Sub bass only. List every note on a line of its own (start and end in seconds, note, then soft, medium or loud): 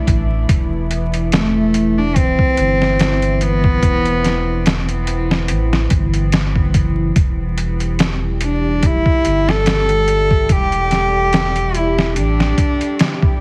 0.08 0.45 A1 loud
0.49 2.34 E1 medium
2.58 3.79 G1 medium
3.83 5.51 E1 medium
5.49 5.86 A1 medium
5.91 6.76 G1 loud
6.74 7.11 F#1 medium
7.16 9.01 E1 loud
9.25 10.46 G1 medium
10.50 12.18 E1 loud
12.16 12.53 A1 medium